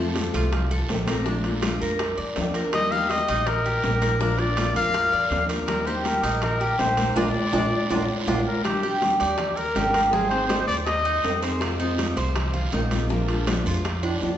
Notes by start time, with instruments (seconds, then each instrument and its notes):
Already playing: upright bass F2, steel-string acoustic guitar C4 F4, cuban tres A4
0.00 steel-string acoustic guitar F3 A3
0.16 steel-string acoustic guitar F3 A3 C4 F4, high bongo, high conga, high timbale, low timbale, short guiro
0.34 upright bass C2, cuban tres F4, high bongo, high conga, high timbale, short guiro
0.53 muted steel-string acoustic guitar stroke, high bongo, high conga, low conga, high timbale, long guiro
0.71 cuban tres A4, high conga, low conga
0.88 upright bass A#1, steel-string acoustic guitar F3 A3 C4 F4, high bongo, low bongo, high conga, high timbale, low timbale, short guiro
1.06 steel-string acoustic guitar F3 A3 C4 F4, cuban tres A#4, high bongo, high conga, high timbale, short guiro
1.25 steel-string acoustic guitar F3 A#3 D4 F4, cuban tres D4, high bongo, high conga, long guiro
1.44 steel-string acoustic guitar A#3 D4 F4, high bongo, high conga, high timbale
1.62 steel-string acoustic guitar F3 A#3 D4 F4, cuban tres F4, high bongo, high conga, high timbale, low timbale, short guiro
1.81 upright bass F2, cuban tres A#4, high bongo, high conga, short guiro
1.99 muted steel-string acoustic guitar stroke, high bongo, high conga, high timbale, long guiro
2.18 upright bass F2, cuban tres D5, high conga
2.36 upright bass D#2, steel-string acoustic guitar F3 A#3 D4 F4, high bongo, low bongo, high conga, high timbale, low timbale, short guiro
2.54 steel-string acoustic guitar A#3 D4 F4, cuban tres A#4, high bongo, high timbale, short guiro
2.73 steel-string acoustic guitar D#3 G3 A#3 D#4 G4, trumpet D#5, high bongo, high conga, high timbale, long guiro
2.91 steel-string acoustic guitar G3 A#3 D#4 G4, cuban tres G4, trumpet F5, high bongo, high conga
3.09 steel-string acoustic guitar G3 A#3 D#4 G4, trumpet D#5, high bongo, high conga, high timbale, low timbale, short guiro
3.28 upright bass A#1, cuban tres D#4, high bongo, high conga, high timbale, short guiro
3.46 trumpet A#4, muted steel-string acoustic guitar stroke, high bongo, high conga, low conga, high timbale, long guiro
3.66 cuban tres G4, high conga
3.83 upright bass A#1, steel-string acoustic guitar G3 A#3 D#4 G4, high bongo, low bongo, high conga, high timbale, low timbale, short guiro
4.01 steel-string acoustic guitar G3 A#3 D#4 G4, cuban tres A#4, high bongo, high conga, high timbale, short guiro
4.19 steel-string acoustic guitar F3 A#3 D4 F4, cuban tres D4, trumpet A#4, high bongo, high conga, long guiro
4.38 steel-string acoustic guitar A#3 D4 F4, trumpet D5, high bongo, high conga, high timbale
4.57 steel-string acoustic guitar F3 A#3 D4 F4, cuban tres F4, high bongo, high conga, high timbale, low timbale, short guiro
4.75 upright bass F2, cuban tres A#4, trumpet F5, high bongo, high conga, short guiro
4.93 muted steel-string acoustic guitar stroke, high bongo, high conga, high timbale, long guiro
5.13 upright bass F2, cuban tres D5, high conga
5.30 upright bass D#2, steel-string acoustic guitar F3 A#3 D4 F4, high bongo, low bongo, high conga, high timbale, low timbale, short guiro
5.49 steel-string acoustic guitar A#3 D4 F4, cuban tres A#4, high bongo, high timbale, short guiro
5.67 steel-string acoustic guitar D#3 G3 A#3 D#4 G4, trumpet A#4, high bongo, high conga, high timbale, long guiro
5.86 steel-string acoustic guitar G3 A#3 D#4 G4, cuban tres G4, trumpet C5, high bongo, high conga
6.05 steel-string acoustic guitar G3 A#3 D#4 G4, trumpet A#4, high bongo, high conga, high timbale, low timbale, short guiro
6.22 upright bass A#1, cuban tres D#4, high bongo, high conga, high timbale, short guiro
6.42 trumpet A#4, muted steel-string acoustic guitar stroke, high bongo, high conga, low conga, high timbale, long guiro
6.61 cuban tres G4, high conga
6.78 upright bass A#1, steel-string acoustic guitar G3 A#3 D#4 G4, trumpet C5, high bongo, low bongo, high conga, high timbale, low timbale, short guiro
6.97 steel-string acoustic guitar G3 A#3 D#4 G4, cuban tres A#4, high bongo, high conga, high timbale, short guiro
7.16 upright bass A#1, steel-string acoustic guitar A#3 D4 F4, cuban tres D4 F4 A#4, trumpet D5, low bongo, high conga, high timbale, long guiro
7.53 upright bass A#1, steel-string acoustic guitar A#3 D4 F4, cuban tres D4 F4 A#4, low bongo, high conga, high timbale, long guiro
7.90 upright bass A#1, steel-string acoustic guitar A#3 D4 F4, cuban tres D4 F4 A#4, low bongo, high conga, high timbale, long guiro
8.27 upright bass A#1, steel-string acoustic guitar A#3 D4 F4, cuban tres D4 F4 A#4, low bongo, high conga, high timbale, long guiro
8.46 trumpet A#4
8.64 steel-string acoustic guitar D#3 G3 D4 G4, trumpet G4, high bongo, high conga, high timbale, long guiro
8.83 steel-string acoustic guitar G3 D4 G4, cuban tres G4, high bongo, high conga
9.02 steel-string acoustic guitar D#3 G3 D4 G4, high bongo, high conga, high timbale, low timbale, short guiro
9.20 upright bass D#2, trumpet G4, cuban tres D5, high bongo, high conga, high timbale, short guiro
9.38 muted steel-string acoustic guitar stroke, high bongo, high conga, low conga, high timbale, long guiro
9.56 trumpet A#4, cuban tres A#4, high conga
9.75 upright bass G#1, steel-string acoustic guitar D#3 G3 D4 G4, cuban tres G4, high bongo, low bongo, high conga, high timbale, low timbale, short guiro
9.93 steel-string acoustic guitar G3 D4 G4, trumpet A#4, high bongo, high conga, high timbale, short guiro
10.11 steel-string acoustic guitar D#3 G3 C4 D#4 G#4, cuban tres C4, trumpet G#4, high bongo, high conga, long guiro
10.30 steel-string acoustic guitar G3 C4 D#4 G#4, trumpet C5, high bongo, high conga, high timbale
10.47 steel-string acoustic guitar C4 D#4, cuban tres D#4, trumpet C5, high bongo, high conga, high timbale, low timbale, short guiro
10.52 steel-string acoustic guitar G#4
10.67 upright bass D#2, trumpet D5, high bongo, high conga, short guiro
10.86 trumpet D#5, muted steel-string acoustic guitar stroke, high bongo, high conga, high timbale, long guiro
11.05 cuban tres D#4, high conga
11.23 upright bass F2, steel-string acoustic guitar G3 C4 D#4 G#4, high bongo, low bongo, high conga, high timbale, low timbale, short guiro
11.42 steel-string acoustic guitar G3 C4 D#4 G#4, cuban tres C5, high bongo, high timbale, short guiro
11.61 steel-string acoustic guitar C3 D#3 G#3 C4 F4, high bongo, high conga, high timbale, long guiro
11.79 steel-string acoustic guitar D#3 G#3 C4 F4, cuban tres D#4, high bongo, high conga
11.98 steel-string acoustic guitar D#3 G#3 C4 F4, high bongo, high conga, high timbale, low timbale, short guiro
12.16 upright bass C2, cuban tres C5, high bongo, high conga, high timbale, short guiro
12.35 muted steel-string acoustic guitar stroke, high bongo, high conga, low conga, high timbale, long guiro
12.54 cuban tres F4, high conga, low conga
12.72 upright bass A#1, steel-string acoustic guitar D#3 G#3 C4 F4, cuban tres D#4, high bongo, low bongo, high conga, high timbale, low timbale, short guiro
12.91 steel-string acoustic guitar D#3 G#3 C4 F4, high bongo, high conga, high timbale, short guiro
13.09 steel-string acoustic guitar F3 G#3 D4 F4, cuban tres A#3, high bongo, high conga, long guiro
13.28 steel-string acoustic guitar G#3 D4 F4, high bongo, high conga, high timbale
13.47 steel-string acoustic guitar F3 G#3 D4 F4, cuban tres D4, high bongo, high conga, high timbale, low timbale, short guiro
13.66 upright bass F2, cuban tres F4, high bongo, high conga, short guiro
13.85 muted steel-string acoustic guitar stroke, high bongo, high conga, high timbale, long guiro
14.03 cuban tres D4, high conga, high timbale
14.21 upright bass D#2, steel-string acoustic guitar F3 G#3 D4 F4, high bongo, low bongo, high conga, high timbale, short guiro